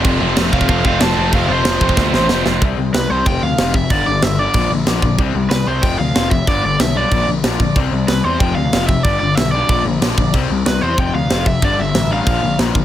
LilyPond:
<<
  \new Staff \with { instrumentName = "Overdriven electric guitar" } { \time 4/4 \key c \major \tempo 4 = 187 r4. f''4 f''8 a''4 | f''8 c''2. r8 | r4 b'8 c''8 g''8 f''4 e''8 | d''8 d''8 e''8 d''4 r4. |
r4 b'8 c''8 g''8 f''4 e''8 | d''8 d''8 e''8 d''4 r4. | r4 b'8 c''8 g''8 f''4 e''8 | d''8 d''8 e''8 d''4 r4. |
r4 b'8 c''8 g''8 f''4 e''8 | d''8 e''4 f''4. r4 | }
  \new Staff \with { instrumentName = "Distorted electric guitar" } { \clef bass \time 4/4 \key c \major <f, c f a c'>8 <f, c f a c'>8 <f, c f a c'>8 <f, c f a c'>8 <f, c f a c'>8 <f, c f a c'>8 <f, c f a c'>8 <f, c f a c'>8 | <f, c f a c'>8 <f, c f a c'>8 <f, c f a c'>8 <f, c f a c'>8 <f, c f a c'>8 <f, c f a c'>8 <f, c f a c'>8 <f, c f a c'>8 | r1 | r1 |
r1 | r1 | r1 | r1 |
r1 | r1 | }
  \new Staff \with { instrumentName = "Distorted electric guitar" } { \clef bass \time 4/4 \key c \major <f, c f a c'>2.~ <f, c f a c'>8 <f, c f a c'>8~ | <f, c f a c'>2.~ <f, c f a c'>8 r8 | r1 | r1 |
r1 | r1 | r1 | r1 |
r1 | r1 | }
  \new Staff \with { instrumentName = "Distorted electric guitar" } { \clef bass \time 4/4 \key c \major <f, c f a c'>8 <f, c f a c'>8 <f, c f a c'>8 <f, c f a c'>8 <f, c f a c'>8 <f, c f a c'>8 <f, c f a c'>8 <f, c f a c'>8 | <f, c f a c'>8 <f, c f a c'>8 <f, c f a c'>8 <f, c f a c'>8 <f, c f a c'>8 <f, c f a c'>8 <f, c f a c'>8 <f, c f a c'>8 | <c g c'>8 <c g>8 <c g>8 <c g c'>8 <f, c f>8 <f, c>8 <f, c f>8 <f, c>8 | <g, d g>8 <g, d>8 <g, d>8 <g, d g>8 <bes, d f>8 <bes, d>8 <bes, d f>8 <bes, d>8 |
<c g c'>8 <c g>8 <c g>8 <c g c'>8 <f, c f>8 <f, c>8 <f, c f>8 <f, c>8 | <g, d g>8 <g, d>8 <g, d>8 <g, d g>8 <bes, d f>8 <bes, d>8 <bes, d f>8 <bes, d>8 | <c g c'>8 <c g>8 <c g>8 <c g c'>8 <f, c f>8 <f, c>8 <f, c f>8 <f, c>8 | <g, d g>8 <g, d>8 <g, d>8 <g, d g>8 <bes, d f>8 <bes, d>8 <bes, d f>8 <bes, d>8 |
<c g c'>8 <c g>8 <c g>8 <c g c'>8 <f, c f>8 <f, c>8 <f, c f>8 <f, c>8 | <g, d g>8 <g, d>8 <g, d>8 <g, d g>8 <bes, d f>8 <bes, d>8 <bes, d f>8 <bes, d>8 | }
  \new Staff \with { instrumentName = "Picked electric bass" } { \clef bass \time 4/4 \key c \major f,,8 f,,8 f,,8 f,,8 f,,8 f,,8 f,,8 f,,8 | f,,8 f,,8 f,,8 f,,8 d,8 a,,8 f,,8 f,,8 | c,8 c,8 c,8 c,8 f,,8 d,8 f,,4 | g,,8 g,,8 g,,4 bes,,8 bes,,8 bes,,8 bes,,8 |
c,8 c,8 c,8 c,8 f,,8 d,8 f,,4 | g,,8 g,,8 b,,4 bes,,8 bes,,8 bes,,8 bes,,8 | c,8 c,8 c,8 e,8 f,,8 d,8 f,,4 | g,,8 g,,8 b,,4 bes,,8 bes,,8 bes,,8 bes,,8 |
c,8 c,8 c,8 e,8 f,,8 d,8 f,,4 | g,,8 g,,8 a,,4 bes,,8 bes,,8 bes,,8 bes,,8 | }
  \new DrumStaff \with { instrumentName = "Drums" } \drummode { \time 4/4 <cymc bd>4 <cymc sn>8 bd16 bd16 <cymc bd>8 bd8 <cymc sn>4 | <cymc bd>4 <cymc sn>8 bd16 bd16 <bd sn>8 sn8 sn8 sn8 | <cymc bd>4 <cymc sn>4 <cymc bd>4 <cymc sn>8 bd8 | <cymc bd>4 <cymc sn>4 <cymc bd>4 <cymc sn>8 bd8 |
<cymc bd>4 <cymc sn>4 <cymc bd>4 <cymc sn>8 bd8 | <cymc bd>4 <cymc sn>4 <cymc bd>4 <cymc sn>8 bd8 | <cymc bd>4 <cymc sn>4 <cymc bd>4 <cymc sn>8 bd8 | <cymc bd>4 <cymc sn>4 <cymc bd>4 <cymc sn>8 bd8 |
<cymc bd>4 <cymc sn>4 <cymc bd>4 <cymc sn>8 bd8 | <cymc bd>4 <cymc sn>4 <cymc bd>4 <cymc sn>8 bd8 | }
>>